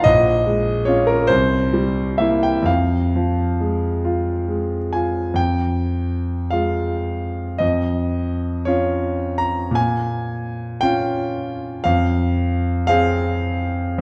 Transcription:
<<
  \new Staff \with { instrumentName = "Grand piano" } { \time 6/8 \key f \minor \tempo 4. = 54 ees''4 des''16 bes'16 c''4 e''16 g''16 | f''2~ f''8 aes''8 | g''4. f''4. | ees''4. des''4 bes''8 |
aes''4. g''4. | f''4. f''4. | }
  \new Staff \with { instrumentName = "Grand piano" } { \time 6/8 \key f \minor bes,,8 aes8 <des' f'>8 c,8 g8 <bes e'>8 | f,8 f8 aes8 f'8 aes8 f'8 | f,4. <aes f'>4. | f,4. <des' f'>4. |
bes,4. <des' f'>4. | f,4. <c' aes'>4. | }
>>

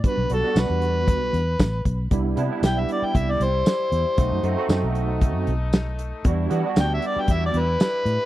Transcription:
<<
  \new Staff \with { instrumentName = "Harmonica" } { \time 4/4 \key e \minor \tempo 4 = 116 b'8 a'8 b'2. | r4 g''16 e''16 d''16 g''16 e''16 d''16 c''4.~ | c''4. r2 r8 | r4 g''16 e''16 d''16 g''16 e''16 d''16 b'4. | }
  \new Staff \with { instrumentName = "Horn section" } { \time 4/4 \key e \minor r1 | <g e'>1 | <a dis'>1 | <g d' e'>1 | }
  \new Staff \with { instrumentName = "Tine electric piano" } { \time 4/4 \key e \minor <g b d' fis'>8 <g b d' fis'>16 <g b d' fis'>4.~ <g b d' fis'>16 r4. | <g b d' e'>8 <g b d' e'>16 <g b d' e'>4.~ <g b d' e'>16 r4. | <a c' dis' fis'>8 <a c' dis' fis'>16 <a c' dis' fis'>4.~ <a c' dis' fis'>16 r4. | <g b d' fis'>8 <g b d' fis'>16 <g b d' fis'>4.~ <g b d' fis'>16 r4. | }
  \new Staff \with { instrumentName = "Fingered electric bass" } { \clef bass \time 4/4 \key e \minor r16 b,,16 b,,16 r16 b,,16 e,4 b,,16 e,8 a,,8 b,,8 | c,8 c16 r16 b,,8 r8 c,8 c,8 r8 e,16 r16 | b,,16 fis,16 fis,16 r16 fis,16 b,,4 fis,16 b,,4. | e,8 e16 r16 d,8 r8 e,8 e,8 r8 a,16 r16 | }
  \new DrumStaff \with { instrumentName = "Drums" } \drummode { \time 4/4 <hh bd>8 hh8 <hh sn tamb>8 hh8 <hh bd>8 hh8 <hh bd sn tamb>8 <hh bd>8 | <hh bd>8 hh8 <hh sn tamb>8 hh8 <hh bd>8 hh8 <hh sn tamb>8 hh8 | <hh bd>8 hh8 <hh sn tamb>8 hh8 <hh bd>8 hh8 <hh sn tamb>8 hh8 | <hh bd>8 hh8 <hh sn tamb>8 hh8 <hh bd>8 hh8 <hh sn tamb>8 hh8 | }
>>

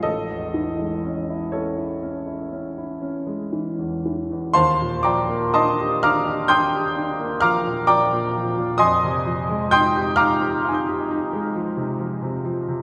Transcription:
<<
  \new Staff \with { instrumentName = "Grand piano" } { \time 9/8 \key ees \lydian \tempo 4. = 42 << { <a' ees''>4. <a' cis''>2~ <a' cis''>8 r8 | <c'' f'' a'' c'''>8 <d'' g'' bes'' d'''>8 <ees'' a'' c''' ees'''>8 <f'' bes'' d''' f'''>8 <g'' c''' ees''' g'''>4 <f'' bes'' d''' f'''>8 <d'' g'' bes'' d'''>4 | <ees'' aes'' c''' ees'''>4 <g'' c''' ees''' g'''>8 <f'' bes'' d''' f'''>2~ <f'' bes'' d''' f'''>8 r8 | } \\ { r1 r8 | r1 r8 | r2 <f'' aes'' ees''' g'''>2~ <f'' aes'' ees''' g'''>8 | } >> }
  \new Staff \with { instrumentName = "Grand piano" } { \clef bass \time 9/8 \key ees \lydian a,,16 e,16 e16 gis16 cis'16 e'16 cis'16 e'16 cis'16 e'16 cis'16 e'16 cis'16 gis16 e16 e,16 e16 e,16 | ees,16 bes,16 f16 bes16 d'16 g'16 d'16 g'16 d'16 g'16 d'16 bes16 f16 bes,16 f16 bes,16 f16 bes,16 | f,16 c16 f16 aes16 ees'16 g'16 ees'16 g'16 ees'16 g'16 ees'16 aes16 f16 c16 f16 c16 f16 c16 | }
>>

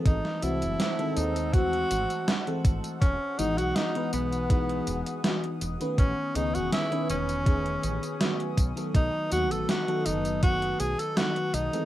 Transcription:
<<
  \new Staff \with { instrumentName = "Ambient pad" } { \time 4/4 \key e \major \tempo 4 = 81 << { e'''1 | dis'''1~ | dis'''1~ | dis'''1 | } \\ { <bis' fis'' a''>1 | gis'1 | <b' gis'' cis'''>2.~ <b' gis'' cis'''>8 <b' a''>8~ | <b' a''>1 | } >> }
  \new Staff \with { instrumentName = "Tenor saxophone" } { \time 4/4 \key e \major dis'8 e'4 dis'8 fis'4. r8 | cis'8 dis'16 fis'16 dis'8 b2 r8 | cis'8 dis'16 fis'16 e'8 cis'2 r8 | dis'8 fis'16 a'16 fis'8 dis'8 fis'8 gis'16 a'16 fis'8 dis'8 | }
  \new Staff \with { instrumentName = "FM electric piano" } { \time 4/4 \key e \major <e gis a c' a'>8 <e gis a bis fis'>8. <dis gis a bis a'>8. <e gis a bis fis'>4 r16 <e gis a bis a'>8. | r8 <e gis b dis' fis'>8. <e gis b dis' b'>8. <e gis b dis' fis'>4 <e gis b dis' fis'>8. <dis a b cis' b'>16~ | <dis a b cis' b'>8 <dis a b cis' gis'>8. <dis a b cis' b'>8. <dis a b cis' gis'>4 <dis fis a b fis'>8. <dis fis a b a'>16~ | <dis fis a b a'>8 <dis fis a b fis'>8. <dis fis a b a'>8. <dis fis a b fis'>4 <dis fis a b fis'>8. <e gis a bis a'>16 | }
  \new Staff \with { instrumentName = "Fretless electric bass" } { \clef bass \time 4/4 \key e \major gis,,16 r16 bis,,16 fis,,16 r8 dis,4 gis,,16 r8. gis,,16 r16 | e,,16 r16 gis,,16 b,,16 r8 b,,4 e,,16 r8. e,,16 r16 | a,,16 r16 cis,16 e,,16 r8 e,,4 a,,16 r8. b,,16 r16 | b,,16 r16 dis,16 a,,16 r8 fis,,4 b,,16 r8. b,,16 r16 | }
  \new DrumStaff \with { instrumentName = "Drums" } \drummode { \time 4/4 <hh bd tamb>16 sn16 <hh tamb>16 <hh tamb>16 <hh sn tamb>16 hh16 <hh tamb>16 <hh tamb>16 <hh bd tamb>16 hh16 <hh tamb>16 <hh tamb>16 <hh sn tamb>16 hh16 <hh bd tamb>16 <hh tamb>16 | <hh bd tamb>8 <hh tamb>16 <hh tamb>16 <hh sn tamb>16 hh16 <hh tamb>16 <hh tamb>16 <hh bd tamb>16 hh16 <hh tamb>16 <hh tamb>16 <hh sn tamb>16 hh16 <hh tamb>16 <hh tamb>16 | <hh bd tamb>8 <hh tamb>16 <hh tamb>16 <hh sn tamb>16 hh16 <hh tamb>16 <hh tamb>16 <hh bd tamb>16 hh16 <hh tamb>16 <hh tamb>16 <hh sn tamb>16 hh16 <hh bd tamb>16 <hh tamb>16 | <hh bd tamb>8 <hh tamb>16 <hh tamb>16 <hh sn tamb>16 hh16 <hh tamb>16 <hh tamb>16 <hh bd tamb>16 hh16 <hh tamb>16 <hh tamb>16 <hh sn tamb>16 hh16 <hh tamb>16 <hh tamb>16 | }
>>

